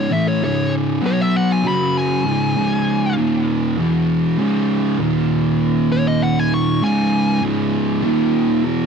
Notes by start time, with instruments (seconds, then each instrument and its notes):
Already playing: distorted electric guitar G#2 C#3, lead electric guitar C#5
0.10 distorted electric guitar A2 E3 A3, lead electric guitar E5
0.28 lead electric guitar C#5
0.42 distorted electric guitar C#2 G#2 C#3, lead electric guitar C#5
1.02 distorted electric guitar B2 F#3 B3
1.06 lead electric guitar C#5
1.21 lead electric guitar E5
1.36 lead electric guitar F#5
1.52 lead electric guitar G#5
1.64 distorted electric guitar F#2 C#3 F#3
1.68 lead electric guitar B5
1.97 lead electric guitar G#5
2.25 distorted electric guitar C#2 G#2 C#3
2.56 distorted electric guitar C#2 G#2 C#3
3.17 distorted electric guitar D#2 A#2 D#3
3.77 distorted electric guitar E2 B2 E3
4.38 distorted electric guitar C#2 G#2 C#3
4.99 distorted electric guitar D#2 A#2 D#3
5.92 lead electric guitar C#5
6.08 lead electric guitar D#5
6.23 lead electric guitar F#5
6.39 lead electric guitar G#5
6.54 lead electric guitar C#6
6.82 distorted electric guitar C#2 G#2 C#3, lead electric guitar G#5
7.42 distorted electric guitar C#2 G#2 C#3
8.02 distorted electric guitar D#2 A#2 D#3
8.62 distorted electric guitar E2 B2 E3